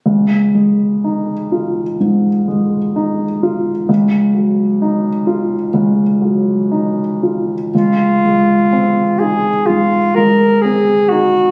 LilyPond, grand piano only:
\new Staff \with { instrumentName = "Grand piano" } { \time 4/4 \key des \major \tempo 4 = 63 des,8 aes8 ees'8 f'8 aes,8 aes8 ees'8 f'8 | des,8 ges8 ees'8 f'8 des,8 ges8 ees'8 f'8 | des,8 aes8 c'8 ees'8 aes,8 aes8 c'8 ees'8 | }